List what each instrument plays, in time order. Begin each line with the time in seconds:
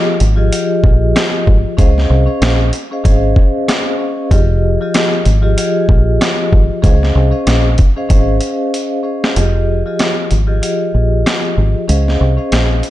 Already playing: vibraphone F3 F4 G4 G#4 D#5
0.20 fingered electric bass G#1, closed hi-hat
0.36 vibraphone F3 F4 G4 G#4 D#5
0.52 vibraphone F3 F4 G4 G#4 D#5, closed hi-hat
0.84 fingered electric bass A#1, kick
1.16 cross-stick, snare, closed hi-hat
1.47 fingered electric bass G#1, kick
1.77 fingered electric bass C#2, vibraphone C#4 G#4 C5 D#5 F5, kick, closed hi-hat
1.98 snare
2.10 fingered electric bass C2
2.26 vibraphone C#4 G#4 C5 D#5 F5
2.42 fingered electric bass A#1, cross-stick, snare, closed hi-hat
2.73 closed hi-hat
2.91 vibraphone C#4 G#4 C5 D#5 F5
3.04 fingered electric bass G#1, vibraphone C#4 G#4 C5 D#5 F5, kick, closed hi-hat
3.36 kick
3.68 cross-stick, snare, closed hi-hat
3.98 vibraphone C#4 G#4 C5 D#5 F5
4.31 fingered electric bass F1, vibraphone F3 F4 G4 G#4 D#5, kick, closed hi-hat
4.80 vibraphone F3 F4 G4 G#4 D#5
4.94 cross-stick, snare, closed hi-hat
5.25 fingered electric bass G#1, closed hi-hat
5.41 vibraphone F3 F4 G4 G#4 D#5
5.57 vibraphone F3 F4 G4 G#4 D#5, closed hi-hat
5.89 fingered electric bass A#1, kick
6.21 cross-stick, snare, closed hi-hat
6.53 fingered electric bass G#1, kick
6.82 fingered electric bass C#2, vibraphone C#4 G#4 C5 D#5 F5, kick, closed hi-hat
7.03 snare
7.15 fingered electric bass C2
7.31 vibraphone C#4 G#4 C5 D#5 F5
7.47 fingered electric bass A#1, cross-stick, snare, closed hi-hat
7.78 kick, closed hi-hat
7.96 vibraphone C#4 G#4 C5 D#5 F5
8.09 fingered electric bass G#1, vibraphone C#4 G#4 C5 D#5 F5, kick, closed hi-hat
8.41 closed hi-hat
8.74 closed hi-hat
9.03 vibraphone C#4 G#4 C5 D#5 F5
9.24 snare
9.36 fingered electric bass F1, vibraphone F3 F4 G4 G#4 D#5, closed hi-hat
9.86 vibraphone F3 F4 G4 G#4 D#5
9.99 cross-stick, snare, closed hi-hat
10.31 fingered electric bass G#1, closed hi-hat
10.47 vibraphone F3 F4 G4 G#4 D#5
10.62 vibraphone F3 F4 G4 G#4 D#5, closed hi-hat
10.94 fingered electric bass A#1
11.26 cross-stick, snare, closed hi-hat
11.58 fingered electric bass G#1
11.88 fingered electric bass C#2, vibraphone C#4 G#4 C5 D#5 F5, closed hi-hat
12.08 snare
12.21 fingered electric bass C2
12.37 vibraphone C#4 G#4 C5 D#5 F5
12.52 fingered electric bass A#1, cross-stick, snare, closed hi-hat
12.83 closed hi-hat